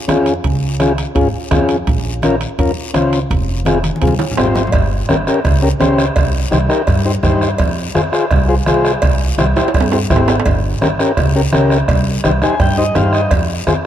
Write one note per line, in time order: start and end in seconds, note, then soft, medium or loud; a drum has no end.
0.08 0.37 F2 medium
0.08 0.33 C#4 medium
0.08 0.34 F4 medium
0.08 0.34 G#4 medium
0.08 bombo rim medium
0.08 high conga medium
0.08 high timbale medium
0.08 low timbale medium
0.08 short guiro medium
0.26 high timbale medium
0.26 short guiro medium
0.44 1.01 C#2 medium
0.44 bombo low medium
0.44 high conga soft
0.44 high timbale medium
0.44 long guiro medium
0.80 0.92 C#4 medium
0.80 0.93 F4 medium
0.80 0.93 G#4 medium
0.80 bombo rim medium
0.80 high conga medium
0.80 high timbale medium
0.80 short guiro medium
0.98 high timbale medium
0.98 short guiro medium
1.15 1.30 G#1 medium
1.15 1.28 C#4 medium
1.15 1.28 F4 medium
1.15 1.28 G#4 medium
1.15 bombo low medium
1.15 high conga soft
1.15 high timbale medium
1.15 long guiro medium
1.51 1.80 F2 medium
1.51 1.76 C#4 medium
1.51 1.77 F4 medium
1.51 1.77 G#4 medium
1.51 bombo low medium
1.51 bombo rim medium
1.51 high conga medium
1.51 high timbale medium
1.51 low timbale medium
1.51 short guiro medium
1.69 high timbale medium
1.69 short guiro medium
1.87 2.44 A#1 medium
1.87 bombo low medium
1.87 high timbale medium
1.87 long guiro medium
2.22 2.36 C#4 medium
2.22 2.36 F4 medium
2.22 2.36 A#4 medium
2.22 bombo rim medium
2.22 high conga medium
2.22 high timbale medium
2.22 short guiro medium
2.41 high timbale medium
2.41 short guiro medium
2.58 2.73 F2 medium
2.58 2.71 C#4 medium
2.58 2.72 F4 medium
2.58 2.72 A#4 medium
2.58 bombo low medium
2.58 high conga soft
2.58 high timbale medium
2.58 long guiro medium
2.94 3.23 C#2 medium
2.94 3.19 C#4 medium
2.94 3.19 F4 medium
2.94 3.20 C5 medium
2.94 bombo rim medium
2.94 high conga medium
2.94 high timbale medium
2.94 short guiro medium
3.13 high timbale medium
3.13 short guiro medium
3.30 3.88 F1 loud
3.30 bombo low medium
3.30 high conga soft
3.30 high timbale medium
3.30 long guiro medium
3.65 3.78 C4 medium
3.65 3.78 F4 medium
3.65 3.79 G#4 medium
3.65 bombo rim medium
3.65 high conga medium
3.65 high timbale medium
3.65 short guiro medium
3.84 high conga medium
3.84 high timbale medium
3.84 short guiro medium
3.96 high conga medium
4.02 4.16 C2 medium
4.02 4.14 C4 medium
4.02 4.14 F4 medium
4.02 4.15 G#4 medium
4.02 bombo low medium
4.02 high timbale medium
4.02 long guiro medium
4.07 high conga medium
4.19 high conga medium
4.19 high timbale loud
4.31 low conga medium
4.37 4.66 G#1 medium
4.37 4.62 C4 medium
4.37 4.63 F4 medium
4.37 4.63 G4 medium
4.37 4.71 C5 medium
4.37 bombo rim medium
4.37 low timbale loud
4.37 short guiro medium
4.43 low conga medium
4.55 bombo rim medium
4.55 low conga medium
4.55 low timbale medium
4.55 short guiro medium
4.67 low conga medium
4.72 5.02 G1 medium
4.72 bombo low medium
4.72 bombo rim medium
4.72 cowbell loud
4.72 high conga soft
4.72 long guiro medium
5.09 5.24 G1 medium
5.09 5.15 C#4 medium
5.09 5.16 G4 medium
5.09 5.16 A#4 medium
5.09 bombo rim medium
5.09 high conga medium
5.09 short guiro medium
5.27 5.40 C#4 medium
5.27 5.40 G4 medium
5.27 5.40 A#4 medium
5.27 bombo rim medium
5.27 short guiro medium
5.44 5.73 C#2 medium
5.44 bombo low medium
5.44 bombo rim medium
5.44 cowbell medium
5.44 high conga soft
5.44 long guiro medium
5.62 5.69 C#4 medium
5.62 5.69 G4 medium
5.62 5.69 A#4 medium
5.80 6.09 C#2 medium
5.80 6.05 C#4 medium
5.80 6.05 G4 medium
5.80 6.06 C5 medium
5.80 bombo rim medium
5.80 high conga medium
5.80 low timbale medium
5.80 short guiro medium
5.98 bombo rim medium
5.98 short guiro medium
6.16 6.45 C2 medium
6.16 bombo low medium
6.16 bombo rim medium
6.16 cowbell loud
6.16 high conga soft
6.16 long guiro medium
6.51 6.66 C2 medium
6.51 6.58 D#4 medium
6.51 6.58 G4 medium
6.51 6.58 C5 medium
6.51 bombo rim medium
6.51 high conga medium
6.51 short guiro medium
6.69 6.82 D#4 medium
6.69 6.82 G4 medium
6.69 6.82 A#4 medium
6.69 bombo rim medium
6.69 short guiro medium
6.87 7.16 G2 medium
6.87 bombo low medium
6.87 bombo rim medium
6.87 cowbell medium
6.87 high conga soft
6.87 long guiro medium
7.05 7.12 D#4 medium
7.05 7.12 G4 medium
7.05 7.12 C5 medium
7.23 7.52 G2 medium
7.23 7.48 D#4 medium
7.23 7.49 G4 medium
7.23 7.49 C5 medium
7.23 bombo low medium
7.23 bombo rim medium
7.23 high conga medium
7.23 low conga medium
7.23 short guiro medium
7.41 bombo rim medium
7.41 short guiro medium
7.58 7.88 F2 loud
7.58 bombo low medium
7.58 bombo rim medium
7.58 cowbell loud
7.58 high conga soft
7.58 long guiro medium
7.95 8.09 F2 medium
7.95 8.01 F4 medium
7.95 8.01 G#4 medium
7.95 8.02 C5 medium
7.95 bombo rim medium
7.95 high conga medium
7.95 short guiro medium
8.12 8.25 F4 medium
8.12 8.25 G#4 medium
8.12 8.26 C5 medium
8.12 bombo rim medium
8.12 short guiro medium
8.31 8.59 C2 medium
8.31 bombo low medium
8.31 bombo rim medium
8.31 cowbell medium
8.31 high conga soft
8.31 long guiro medium
8.48 8.55 F4 medium
8.48 8.55 G#4 medium
8.48 8.55 C5 medium
8.66 8.95 C2 medium
8.66 8.92 F4 medium
8.66 8.92 G#4 medium
8.66 8.93 C5 medium
8.66 bombo rim medium
8.66 high conga medium
8.66 short guiro medium
8.85 bombo rim medium
8.85 short guiro medium
9.02 9.31 C2 medium
9.02 bombo low medium
9.02 bombo rim medium
9.02 cowbell loud
9.02 high conga soft
9.02 long guiro medium
9.38 9.53 C2 medium
9.38 9.44 E4 medium
9.38 9.45 G4 medium
9.38 9.45 C5 loud
9.38 bombo rim medium
9.38 high conga medium
9.38 short guiro medium
9.56 9.69 E4 medium
9.56 9.69 G4 medium
9.56 9.69 C5 medium
9.56 bombo rim medium
9.56 low conga medium
9.56 high timbale medium
9.56 short guiro medium
9.68 high timbale medium
9.74 10.03 G2 medium
9.74 bombo low medium
9.74 bombo rim medium
9.74 cowbell medium
9.74 high conga soft
9.74 long guiro medium
9.81 low timbale medium
9.92 9.98 E4 medium
9.92 9.99 G4 medium
9.92 9.99 C5 medium
9.92 low timbale loud
10.10 10.39 G#1 medium
10.10 10.35 E4 medium
10.10 10.36 G4 medium
10.10 10.36 C5 medium
10.10 bombo low medium
10.10 bombo rim medium
10.10 high conga medium
10.10 low conga medium
10.10 short guiro medium
10.16 low timbale loud
10.28 bombo rim medium
10.28 low timbale loud
10.28 short guiro medium
10.40 low timbale loud
10.46 10.74 G1 loud
10.46 bombo low medium
10.46 bombo rim medium
10.46 cowbell loud
10.46 high conga soft
10.46 long guiro medium
10.81 10.96 G1 medium
10.81 10.88 C#4 medium
10.81 10.88 G4 medium
10.81 10.88 A#4 medium
10.81 bombo rim medium
10.81 high conga medium
10.81 short guiro medium
10.99 11.12 C#4 medium
10.99 11.12 G4 medium
10.99 11.12 A#4 medium
10.99 bombo rim medium
10.99 short guiro medium
11.17 11.46 C#2 medium
11.17 bombo low medium
11.17 bombo rim medium
11.17 cowbell medium
11.17 high conga soft
11.17 long guiro medium
11.36 11.41 C#4 medium
11.36 11.42 G4 medium
11.36 11.42 A#4 medium
11.52 11.81 C#2 medium
11.52 11.78 C#4 medium
11.52 11.78 G4 medium
11.52 11.78 A#4 medium
11.52 bombo rim medium
11.52 high conga medium
11.52 short guiro medium
11.70 bombo rim medium
11.70 short guiro medium
11.88 12.17 C2 loud
11.88 bombo low medium
11.88 bombo rim medium
11.88 cowbell loud
11.88 high conga soft
11.88 long guiro medium
12.24 12.39 C2 medium
12.24 12.31 D#4 medium
12.24 12.31 G4 medium
12.24 12.31 C5 medium
12.24 bombo rim medium
12.24 high conga medium
12.24 short guiro medium
12.42 12.55 D#4 medium
12.42 12.55 G4 medium
12.42 12.55 C5 medium
12.42 12.59 G#5 medium
12.42 bombo rim medium
12.42 low conga medium
12.42 short guiro medium
12.60 12.88 G2 medium
12.60 12.77 G5 medium
12.60 bombo low medium
12.60 bombo rim medium
12.60 cowbell medium
12.60 high conga soft
12.60 long guiro medium
12.78 12.84 D#4 medium
12.78 12.84 G4 medium
12.78 12.84 C5 medium
12.78 12.95 D#5 medium
12.95 13.25 G2 medium
12.95 13.21 D#4 medium
12.95 13.21 G4 medium
12.95 13.21 C5 medium
12.95 13.13 F5 medium
12.95 bombo rim medium
12.95 high conga medium
12.95 low conga medium
12.95 low timbale medium
12.95 short guiro medium
13.13 13.30 D#5 medium
13.13 bombo rim medium
13.13 short guiro medium
13.31 13.60 F2 medium
13.31 bombo low medium
13.31 bombo rim medium
13.31 cowbell loud
13.31 high conga soft
13.31 long guiro medium
13.67 13.81 F2 medium
13.67 13.73 F4 medium
13.67 13.74 G#4 medium
13.67 13.74 C5 loud
13.67 bombo rim medium
13.67 high conga medium
13.67 short guiro medium